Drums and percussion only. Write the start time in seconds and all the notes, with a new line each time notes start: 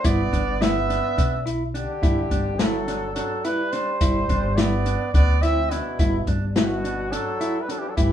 0.04 kick, closed hi-hat
0.33 kick, closed hi-hat
0.62 snare, closed hi-hat
0.90 snare, closed hi-hat
1.18 kick, closed hi-hat
1.47 closed hi-hat
1.75 closed hi-hat
2.03 kick, closed hi-hat
2.31 kick, closed hi-hat
2.59 snare, closed hi-hat
2.88 snare, closed hi-hat
3.16 closed hi-hat
3.45 snare, closed hi-hat
3.73 snare, closed hi-hat
4.01 kick, closed hi-hat
4.29 kick, closed hi-hat
4.58 snare, closed hi-hat
4.86 closed hi-hat
5.14 kick, closed hi-hat
5.43 snare, closed hi-hat
5.71 snare, closed hi-hat
5.99 kick, closed hi-hat
6.27 kick, closed hi-hat
6.56 snare, closed hi-hat
6.85 closed hi-hat
7.13 closed hi-hat
7.41 closed hi-hat
7.69 closed hi-hat
7.97 kick, closed hi-hat